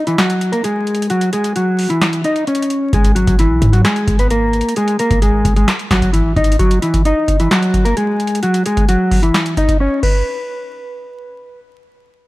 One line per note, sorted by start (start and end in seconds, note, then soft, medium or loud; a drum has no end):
0.07 0.17 E3 medium
0.07 0.16 E4 medium
0.07 closed hi-hat soft
0.18 0.51 F#3 medium
0.18 0.51 F#4 medium
0.18 snare loud
0.18 clap medium
0.18 closed hi-hat medium
0.30 closed hi-hat medium
0.41 closed hi-hat medium
0.52 0.62 A#3 medium
0.52 0.62 A#4 medium
0.52 closed hi-hat medium
0.64 1.08 G#3 medium
0.64 1.07 G#4 medium
0.64 closed hi-hat medium
0.87 closed hi-hat soft
0.95 closed hi-hat medium
1.02 closed hi-hat medium
1.10 1.29 F#3 medium
1.10 1.29 F#4 medium
1.10 closed hi-hat medium
1.21 closed hi-hat medium
1.33 1.52 G#3 medium
1.33 1.52 G#4 medium
1.33 closed hi-hat medium
1.44 closed hi-hat medium
1.56 1.88 F#3 medium
1.56 1.88 F#4 medium
1.56 closed hi-hat medium
1.79 open hi-hat medium
1.90 2.23 E3 medium
1.90 2.22 E4 medium
1.90 closed hi-hat soft
2.01 snare loud
2.01 clap medium
2.01 closed hi-hat medium
2.13 closed hi-hat medium
2.24 2.43 D#4 medium
2.24 2.44 D#5 medium
2.24 closed hi-hat medium
2.36 closed hi-hat soft
2.47 2.90 C#4 medium
2.47 2.91 C#5 medium
2.47 closed hi-hat soft
2.55 closed hi-hat medium
2.62 closed hi-hat medium
2.70 closed hi-hat medium
2.93 3.26 G#1 loud
2.93 3.13 G#3 medium
2.93 3.12 G#4 medium
2.93 kick loud
2.93 closed hi-hat medium
3.05 closed hi-hat medium
3.15 3.35 F#3 medium
3.15 3.34 F#4 medium
3.15 closed hi-hat medium
3.27 3.52 G#1 loud
3.27 kick loud
3.27 closed hi-hat medium
3.39 3.72 E3 medium
3.39 3.71 E4 medium
3.39 closed hi-hat medium
3.50 3.61 B1 loud
3.62 3.84 G#2 loud
3.62 kick medium
3.62 closed hi-hat medium
3.73 3.83 F#3 medium
3.73 3.82 F#4 medium
3.73 closed hi-hat soft
3.85 4.17 G#3 medium
3.85 4.17 G#4 medium
3.85 snare loud
3.85 clap medium
3.85 closed hi-hat medium
3.96 closed hi-hat medium
4.08 4.63 G#1 loud
4.08 kick medium
4.08 closed hi-hat medium
4.19 4.29 B3 medium
4.19 4.29 B4 medium
4.19 closed hi-hat medium
4.30 4.74 A#3 medium
4.30 4.74 A#4 medium
4.30 closed hi-hat medium
4.53 closed hi-hat soft
4.61 closed hi-hat medium
4.69 closed hi-hat medium
4.76 4.96 G#3 medium
4.76 4.95 G#4 loud
4.76 closed hi-hat medium
4.88 closed hi-hat medium
4.99 5.19 A#3 medium
4.99 5.18 A#4 medium
4.99 closed hi-hat medium
5.11 5.44 G#1 loud
5.11 kick loud
5.11 closed hi-hat medium
5.22 5.55 G#3 medium
5.22 5.54 G#4 medium
5.22 closed hi-hat medium
5.45 5.67 G#1 loud
5.45 kick medium
5.45 closed hi-hat medium
5.56 5.66 G#3 medium
5.56 5.66 G#4 medium
5.56 closed hi-hat soft
5.68 snare loud
5.68 clap medium
5.68 closed hi-hat medium
5.79 closed hi-hat medium
5.91 6.35 G#1 loud
5.91 6.11 F#3 medium
5.91 6.10 F#4 medium
5.91 kick medium
5.91 snare loud
5.91 clap medium
5.91 closed hi-hat medium
6.02 kick medium
6.02 closed hi-hat medium
6.13 6.33 E3 medium
6.13 6.32 E4 medium
6.13 closed hi-hat medium
6.36 6.59 G#1 loud
6.36 6.55 D#4 medium
6.36 6.56 D#5 medium
6.36 kick loud
6.36 closed hi-hat soft
6.44 closed hi-hat medium
6.52 closed hi-hat medium
6.59 6.79 F#3 medium
6.59 6.78 F#4 medium
6.59 kick loud
6.59 closed hi-hat medium
6.71 closed hi-hat medium
6.82 7.02 E3 medium
6.82 7.01 E4 medium
6.82 closed hi-hat medium
6.94 kick loud
6.94 closed hi-hat medium
7.05 7.38 D#4 medium
7.05 7.38 D#5 medium
7.05 closed hi-hat medium
7.28 kick medium
7.28 closed hi-hat medium
7.40 7.50 E3 medium
7.40 7.49 E4 medium
7.40 closed hi-hat soft
7.51 7.84 F#3 medium
7.51 7.83 F#4 medium
7.51 snare loud
7.51 clap medium
7.51 closed hi-hat medium
7.62 closed hi-hat medium
7.74 kick loud
7.74 closed hi-hat medium
7.85 7.95 A#3 medium
7.85 7.95 A#4 medium
7.85 closed hi-hat medium
7.97 8.40 G#3 medium
7.97 8.40 G#4 medium
7.97 closed hi-hat medium
8.20 closed hi-hat soft
8.27 closed hi-hat medium
8.35 closed hi-hat medium
8.43 8.62 F#3 medium
8.43 8.62 F#4 medium
8.43 closed hi-hat medium
8.54 closed hi-hat medium
8.66 8.85 G#3 medium
8.66 8.85 G#4 medium
8.66 closed hi-hat medium
8.77 kick loud
8.77 closed hi-hat medium
8.89 9.21 F#3 medium
8.89 9.21 F#4 medium
8.89 closed hi-hat medium
9.11 kick medium
9.11 open hi-hat medium
9.22 9.55 E3 medium
9.22 9.55 E4 medium
9.22 closed hi-hat soft
9.34 snare loud
9.34 clap medium
9.34 closed hi-hat medium
9.46 closed hi-hat medium
9.57 9.76 D#4 medium
9.57 9.77 D#5 medium
9.57 kick medium
9.57 closed hi-hat medium
9.69 kick medium
9.69 closed hi-hat medium
9.80 10.02 C#4 medium
9.80 10.02 C#5 medium
10.03 11.59 B4 medium
10.03 kick loud
10.03 crash medium